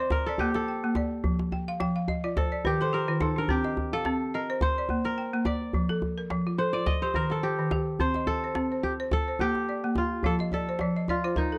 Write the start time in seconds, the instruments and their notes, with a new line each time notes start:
Already playing: kora C5 D5, balafon D#5
0.00 balafon C5
0.10 kora A#4, djembe slap, djembe bass
0.26 kora A4, balafon D5
0.38 balafon A#3, kora G4, djembe tone
0.54 kora A4, djembe slap
0.68 balafon G5
0.84 balafon A#3
0.95 balafon D5, djembe slap, djembe tone
1.11 djembe slap
1.24 balafon F3, djembe bass
1.39 djembe slap
1.52 balafon G5, djembe tone
1.68 balafon F5, djembe slap
1.80 balafon F3 G5, djembe slap
1.96 balafon F5
2.08 balafon D#5, djembe tone
2.24 balafon F4 D5
2.37 kora A4, balafon C5, djembe slap, djembe bass
2.52 balafon D5
2.65 balafon D#3 A#4, kora G4, djembe slap, djembe tone
2.81 balafon A4, kora C5, djembe slap
2.93 balafon G4, kora A#4
3.08 balafon D#3 F4
3.20 balafon D#4, kora A4, djembe slap, djembe tone
3.36 balafon D4, kora A#4, djembe slap
3.48 balafon C4, kora G4, djembe bass
3.64 balafon D#5, djembe slap
3.77 djembe tone
3.93 kora A4, balafon F5
4.05 balafon C4, djembe slap
4.34 kora A#4, balafon D#5
4.50 balafon C5
4.61 kora C5, djembe slap, djembe bass
4.78 balafon D5
4.89 balafon A#3, djembe slap, djembe tone
5.05 kora A#4, djembe slap
5.18 balafon G5
5.34 balafon A#3
5.45 kora D5, balafon D5, djembe slap, djembe tone
5.61 djembe slap
5.73 balafon F3, djembe bass
5.89 balafon A4, djembe slap
6.02 djembe slap, djembe tone
6.18 balafon A#4
6.30 balafon F3, djembe slap
6.46 balafon F4, djembe slap
6.58 balafon A4, kora C5
6.73 balafon F4, kora D5, djembe slap
6.86 kora D#5, djembe slap, djembe bass
7.01 balafon G4, kora C5, djembe slap
7.14 balafon D#3, kora A#4, djembe tone
7.30 kora A4, djembe slap
7.42 kora G4, balafon C5, djembe slap
7.59 balafon D#3
7.71 balafon G4, djembe slap, djembe tone
7.99 balafon C4, kora C5, djembe bass
8.14 balafon D#5, djembe slap
8.27 kora A4, djembe tone
8.43 balafon C5, djembe slap
8.55 balafon C4, djembe slap
8.72 balafon C5
8.83 kora G4, djembe tone
9.00 balafon C5
9.11 kora A4, djembe slap, djembe bass
9.28 balafon C5
9.39 balafon A#3, kora G4, djembe slap, djembe tone
9.55 djembe slap
9.69 balafon D5
9.84 balafon A#3
9.95 kora F4, djembe slap, djembe tone
10.11 djembe slap
10.23 balafon F3 F5, kora A4, djembe bass
10.39 balafon D#5, djembe slap
10.52 kora A4, balafon D5, djembe tone
10.67 balafon C5, djembe slap
10.79 balafon F3 D5, djembe slap
10.96 balafon D#5
11.08 kora F4, balafon D5, djembe tone
11.24 balafon F4 C5
11.36 kora D#4, balafon A#4, djembe slap, djembe bass
11.52 balafon A4